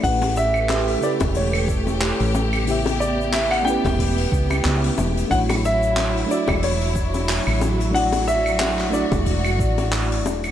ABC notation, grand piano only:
X:1
M:4/4
L:1/16
Q:"Swing 16ths" 1/4=91
K:D
V:1 name="Grand piano"
f2 e4 d2 c6 z2 | z2 d2 e f g8 z2 | f2 e4 d2 c6 z2 | f2 e4 d8 z2 |]